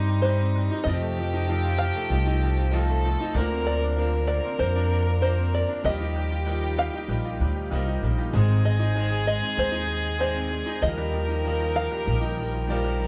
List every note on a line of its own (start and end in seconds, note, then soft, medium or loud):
0.00 0.82 C2 medium
0.00 0.66 G2 medium
0.00 0.82 C3 medium
0.00 0.22 G3 medium
0.00 0.23 G3 medium
0.00 0.25 G3 medium
0.00 0.23 C4 medium
0.00 0.25 C4 medium
0.00 0.24 D#4 medium
0.00 0.25 D#4 medium
0.00 0.40 D#4 medium
0.00 0.88 D#4 loud
0.00 0.26 G4 medium
0.00 0.84 G4 medium
0.00 0.21 C5 loud
0.00 0.24 C5 medium
0.00 5.80 C5 medium
0.00 0.25 D#5 medium
0.00 3.31 D#5 medium
0.00 0.84 C6 medium
0.09 0.71 G4 medium
0.22 0.56 C3 medium
0.22 0.69 G3 medium
0.22 0.54 G3 medium
0.22 0.69 C4 medium
0.22 0.69 D#4 medium
0.22 0.87 C5 medium
0.22 0.69 C5 medium
0.22 0.70 D#5 medium
0.26 0.55 G3 medium
0.26 0.56 C4 medium
0.26 0.57 D#4 medium
0.26 0.57 G4 medium
0.40 0.87 C4 medium
0.56 0.87 G3 medium
0.56 0.71 G3 medium
0.56 0.72 C4 medium
0.56 0.71 D#4 medium
0.56 0.70 G4 medium
0.71 0.86 C4 medium
0.71 0.87 D#4 medium
0.71 0.86 G4 medium
0.84 3.31 F1 medium
0.84 1.89 F2 loud
0.84 3.31 F2 medium
0.84 1.16 F3 loud
0.84 1.17 F3 medium
0.84 1.31 A3 medium
0.84 1.18 C4 medium
0.84 1.32 D#4 medium
0.84 1.32 F4 medium
0.84 3.33 F4 medium
0.84 2.75 G4 loud
0.84 1.32 C5 medium
0.84 1.78 D#5 loud
0.84 1.32 D#5 medium
0.84 3.33 A5 loud
0.88 1.18 D#4 medium
0.88 1.19 A4 medium
1.02 1.64 A3 medium
1.18 1.47 F3 medium
1.18 1.48 C4 medium
1.18 1.48 D#4 medium
1.18 1.49 A4 medium
1.34 1.95 D#4 medium
1.47 1.95 F3 medium
1.47 1.79 F3 medium
1.47 1.93 A3 medium
1.47 1.95 C4 medium
1.47 1.93 D#4 medium
1.47 1.95 D#4 loud
1.47 1.93 F4 medium
1.47 1.94 A4 medium
1.47 1.94 C5 medium
1.47 1.94 F5 medium
1.65 2.27 F4 medium
1.78 2.10 F3 loud
1.78 2.99 F5 loud
1.95 2.58 A3 medium
1.95 2.10 C4 medium
1.95 2.11 D#4 medium
1.95 2.11 A4 medium
2.09 3.14 C2 medium
2.09 2.26 F3 medium
2.09 2.41 F3 medium
2.09 2.55 A3 medium
2.09 2.27 C4 medium
2.09 2.56 D#4 medium
2.09 2.27 D#4 medium
2.09 2.56 F4 medium
2.09 2.25 A4 medium
2.09 2.56 C5 medium
2.09 2.56 D#5 medium
2.26 2.41 C4 soft
2.26 2.89 D#4 medium
2.26 2.42 D#4 medium
2.26 2.42 A4 medium
2.41 2.72 F3 medium
2.41 2.73 C4 medium
2.41 2.73 D#4 medium
2.41 2.74 A4 medium
2.58 3.20 F4 medium
2.70 3.03 F3 medium
2.70 3.03 F3 loud
2.70 3.17 A3 loud
2.70 3.03 C4 loud
2.70 3.17 D#4 medium
2.70 3.04 D#4 loud
2.70 3.18 F4 medium
2.70 3.36 A4 loud
2.70 3.18 C5 medium
2.70 3.18 D#5 loud
2.75 3.05 A4 loud
2.90 3.36 A3 medium
3.04 3.19 F3 medium
3.04 3.35 F3 medium
3.04 3.20 C4 medium
3.04 3.19 D#4 medium
3.04 3.18 A4 medium
3.19 3.35 C4 medium
3.19 3.36 D#4 loud
3.19 3.36 D#4 medium
3.19 3.35 A4 medium
3.34 4.38 D2 loud
3.34 5.80 D2 medium
3.34 5.80 D3 medium
3.34 3.66 D3 medium
3.34 3.65 F3 loud
3.34 3.80 A#3 medium
3.34 3.65 A#3 medium
3.34 3.66 C4 loud
3.34 3.80 D4 medium
3.34 3.67 D4 loud
3.34 8.29 F4 medium
3.34 3.80 F4 medium
3.34 3.96 A#4 loud
3.34 3.67 A#4 loud
3.34 3.80 C5 medium
3.34 5.81 D5 medium
3.34 3.81 D5 loud
3.34 5.81 A#5 medium
3.52 4.13 C4 medium
3.66 3.97 F3 medium
3.66 3.98 A#3 medium
3.66 3.98 C4 medium
3.66 3.98 D4 medium
3.66 3.98 A#4 medium
3.66 4.24 D5 loud
3.83 4.44 D4 medium
3.96 4.44 D3 medium
3.96 4.45 F3 loud
3.96 4.42 A#3 medium
3.96 4.28 A#3 medium
3.96 4.45 C4 medium
3.96 4.42 D4 medium
3.96 4.45 D4 medium
3.96 4.42 F4 medium
3.96 5.85 A#4 loud
3.96 4.44 A#4 medium
3.96 4.42 C5 medium
3.96 4.43 D5 medium
4.14 4.75 A#4 medium
4.27 4.59 A#3 loud
4.27 4.60 D5 medium
4.45 5.07 C4 medium
4.45 4.60 C4 soft
4.45 4.61 D4 medium
4.45 4.60 A#4 medium
4.58 5.63 F2 loud
4.58 4.76 F3 medium
4.58 5.04 A#3 medium
4.58 4.89 A#3 medium
4.58 4.76 C4 medium
4.58 5.04 D4 medium
4.58 5.04 F4 medium
4.58 5.05 C5 medium
4.58 5.17 C5 medium
4.58 5.05 D5 medium
4.62 4.76 D4 medium
4.62 4.74 A#4 medium
4.75 4.90 C4 soft
4.75 5.37 D4 loud
4.75 4.91 D4 medium
4.75 4.91 A#4 medium
4.91 5.21 F3 medium
4.91 5.21 A#3 medium
4.91 5.22 C4 medium
4.91 5.22 D4 medium
4.91 5.23 A#4 medium
5.07 5.69 A#4 medium
5.20 5.53 D3 medium
5.20 5.51 F3 medium
5.20 5.66 A#3 medium
5.20 5.53 A#3 medium
5.20 5.52 C4 medium
5.20 5.66 D4 medium
5.20 5.53 D4 medium
5.20 5.66 F4 medium
5.20 5.67 C5 medium
5.20 5.54 C5 medium
5.20 5.67 D5 medium
5.24 5.54 A#4 medium
5.38 5.84 C4 medium
5.53 5.68 F3 medium
5.53 5.85 A#3 medium
5.53 5.69 C4 medium
5.53 5.68 D4 medium
5.53 5.66 A#4 medium
5.53 5.85 D5 medium
5.68 5.84 C4 soft
5.68 5.84 D4 medium
5.68 5.83 A#4 medium
5.83 6.88 D#2 loud
5.83 6.15 D#3 medium
5.83 8.29 F3 medium
5.83 6.14 F3 medium
5.83 6.29 G3 medium
5.83 6.15 G3 medium
5.83 6.15 A#3 medium
5.83 6.29 D#4 medium
5.83 6.15 D#4 medium
5.83 6.29 F4 medium
5.83 8.02 G4 loud
5.83 6.15 G4 medium
5.83 6.29 A#4 medium
5.83 8.31 A#4 medium
5.83 8.30 D#5 medium
5.83 6.29 D#5 medium
5.83 6.78 D#5 loud
5.83 8.31 G5 medium
6.00 6.62 D#4 medium
6.15 6.45 F3 medium
6.15 6.45 G3 medium
6.15 6.46 A#3 medium
6.15 6.46 D#4 medium
6.15 6.46 G4 medium
6.31 6.93 F4 medium
6.45 6.93 D#3 medium
6.45 6.93 F3 medium
6.45 6.91 G3 medium
6.45 6.77 G3 medium
6.45 6.93 A#3 medium
6.45 6.91 D#4 medium
6.45 6.93 D#4 medium
6.45 6.91 F4 medium
6.45 6.93 G4 medium
6.45 6.92 A#4 medium
6.45 6.92 D#5 medium
6.63 7.24 G4 medium
6.78 7.08 G3 medium
6.78 7.98 F5 loud
6.94 7.09 A#3 soft
6.94 7.56 D#4 medium
6.94 7.09 D#4 medium
6.94 7.09 G4 medium
7.08 7.34 A#1 medium
7.08 7.24 F3 medium
7.08 7.53 G3 medium
7.08 7.40 G3 medium
7.08 7.25 A#3 medium
7.08 7.54 D#4 medium
7.08 7.25 D#4 medium
7.08 7.54 F4 medium
7.08 7.24 G4 medium
7.08 7.54 A#4 medium
7.08 7.54 D#5 medium
7.25 7.41 A#3 soft
7.25 7.41 D#4 medium
7.25 7.87 F4 medium
7.25 7.40 G4 medium
7.40 7.68 D2 medium
7.40 7.71 F3 medium
7.40 7.70 G3 medium
7.40 7.72 A#3 medium
7.40 7.72 D#4 medium
7.40 7.72 G4 medium
7.55 8.17 G4 medium
7.70 7.99 C2 medium
7.70 8.02 D#3 loud
7.70 8.01 F3 medium
7.70 8.16 G3 medium
7.70 8.02 G3 medium
7.70 8.02 A#3 loud
7.70 8.16 D#4 medium
7.70 8.03 D#4 loud
7.70 8.16 F4 medium
7.70 8.03 G4 loud
7.70 8.16 A#4 medium
7.70 8.17 D#5 loud
7.86 8.33 D#4 medium
8.02 8.30 A#1 medium
8.02 8.18 F3 medium
8.02 8.34 G3 medium
8.02 8.18 A#3 medium
8.02 8.18 D#4 medium
8.02 8.18 G4 medium
8.18 8.35 A#3 medium
8.18 8.34 D#4 medium
8.18 8.33 F4 medium
8.18 8.34 G4 medium
8.32 9.37 G#1 loud
8.32 10.78 G#1 medium
8.32 10.78 G#2 medium
8.32 8.65 G#2 loud
8.32 8.65 D#3 medium
8.32 8.78 G#3 medium
8.32 8.63 G#3 medium
8.32 8.78 C4 medium
8.32 8.63 C4 medium
8.32 10.80 D#4 medium
8.32 8.79 D#4 medium
8.32 8.64 D#4 loud
8.32 10.80 G#4 medium
8.32 10.84 G#4 loud
8.32 8.65 G#4 loud
8.32 10.80 C5 medium
8.32 8.79 C5 medium
8.32 8.79 D#5 loud
8.32 10.80 G#5 medium
8.48 9.11 C4 medium
8.64 8.95 G#3 medium
8.64 8.94 G#3 medium
8.64 8.95 C4 medium
8.64 8.95 D#4 medium
8.64 8.95 G#4 medium
8.64 9.26 D#5 medium
8.80 9.42 D#4 medium
8.94 9.42 G#2 medium
8.94 9.42 D#3 medium
8.94 9.40 G#3 medium
8.94 9.24 G#3 medium
8.94 9.42 G#3 medium
8.94 9.40 C4 medium
8.94 9.42 C4 medium
8.94 9.40 D#4 medium
8.94 9.42 D#4 medium
8.94 9.41 G#4 medium
8.94 9.40 C5 medium
8.94 9.41 D#5 medium
9.10 9.73 G#4 medium
9.26 9.55 G#3 medium
9.26 9.59 D#5 medium
9.41 9.56 G#3 soft
9.41 10.04 C4 medium
9.41 9.57 C4 medium
9.41 9.58 D#4 medium
9.41 9.58 G#4 medium
9.57 10.62 D#2 medium
9.57 9.86 G#3 medium
9.57 10.03 G#3 medium
9.57 9.73 G#3 medium
9.57 10.03 C4 medium
9.57 9.74 C4 medium
9.57 10.03 D#4 medium
9.57 9.73 D#4 medium
9.57 9.72 G#4 medium
9.57 10.03 C5 medium
9.57 10.19 C5 loud
9.57 10.03 D#5 medium
9.72 9.88 G#3 medium
9.72 9.88 C4 medium
9.72 10.35 D#4 medium
9.72 9.89 D#4 soft
9.72 9.89 G#4 medium
9.88 10.17 G#3 medium
9.88 10.19 G#3 medium
9.88 10.19 C4 medium
9.88 10.20 D#4 medium
9.88 10.20 G#4 medium
10.03 10.66 G#4 medium
10.18 10.51 G#2 medium
10.18 10.51 D#3 medium
10.18 10.64 G#3 medium
10.18 10.49 G#3 medium
10.18 10.65 C4 medium
10.18 10.50 C4 medium
10.18 10.65 D#4 medium
10.18 10.51 D#4 medium
10.18 10.52 G#4 medium
10.18 10.65 C5 medium
10.18 10.78 C5 medium
10.18 10.65 D5 loud
10.35 10.82 C4 medium
10.50 10.66 G#3 medium
10.50 10.82 G#3 medium
10.50 10.67 C4 medium
10.50 10.66 D#4 medium
10.50 10.65 G#4 medium
10.66 10.82 G#3 medium
10.66 10.83 C4 medium
10.66 10.82 D#4 loud
10.66 10.83 D#4 medium
10.66 10.82 G#4 medium
10.80 13.07 D#2 medium
10.80 11.86 D#2 loud
10.80 13.07 D#3 medium
10.80 11.13 D#3 medium
10.80 11.12 F3 medium
10.80 11.11 F3 medium
10.80 11.27 G3 medium
10.80 11.12 A#3 medium
10.80 11.27 D#4 medium
10.80 13.07 D#4 medium
10.80 11.13 D#4 medium
10.80 11.27 F4 medium
10.80 13.07 F4 medium
10.80 11.14 G4 medium
10.80 11.28 A#4 medium
10.80 12.68 A#4 loud
10.80 13.07 A#4 medium
10.80 11.75 D#5 loud
10.80 11.28 D#5 medium
10.80 13.07 G5 loud
10.98 11.60 G3 medium
11.12 11.44 F3 medium
11.12 11.43 F3 medium
11.12 11.44 A#3 medium
11.12 11.45 D#4 medium
11.12 11.45 G4 medium
11.29 11.91 D#4 medium
11.43 11.92 D#3 medium
11.43 11.74 F3 medium
11.43 11.92 F3 medium
11.43 11.89 G3 medium
11.43 11.92 A#3 medium
11.43 11.89 D#4 medium
11.43 11.92 D#4 loud
11.43 11.90 F4 medium
11.43 11.90 A#4 medium
11.43 11.90 D#5 medium
11.47 11.91 G4 medium
11.60 12.22 F4 medium
11.75 12.05 F3 medium
11.75 12.97 F5 loud
11.91 12.54 G3 medium
11.91 12.07 A#3 medium
11.91 12.08 D#4 medium
11.91 12.07 G4 medium
12.06 13.07 A#1 medium
12.06 12.35 F3 medium
12.06 12.23 F3 medium
12.06 12.52 G3 medium
12.06 12.23 A#3 medium
12.06 12.52 D#4 medium
12.06 12.24 D#4 medium
12.06 12.52 F4 medium
12.06 12.52 A#4 medium
12.06 12.53 D#5 medium
12.10 12.22 G4 medium
12.21 12.84 D#4 medium
12.21 12.39 G4 medium
12.25 12.38 A#3 medium
12.25 12.39 D#4 medium
12.37 12.68 F3 medium
12.37 12.69 F3 medium
12.37 12.69 A#3 medium
12.37 12.70 D#4 medium
12.41 12.70 G4 medium
12.53 13.07 F4 medium
12.68 13.01 D#3 medium
12.68 12.99 F3 medium
12.68 13.00 F3 loud
12.68 13.07 G3 loud
12.68 13.00 A#3 loud
12.68 13.07 D#4 medium
12.68 13.01 D#4 loud
12.68 13.07 F4 medium
12.68 13.01 G4 loud
12.68 13.07 A#4 loud
12.68 13.07 A#4 medium
12.68 13.07 D5 loud
12.85 13.07 G3 medium
13.01 13.07 F3 medium
13.01 13.07 A#3 medium
13.01 13.07 D#4 medium
13.01 13.07 G4 medium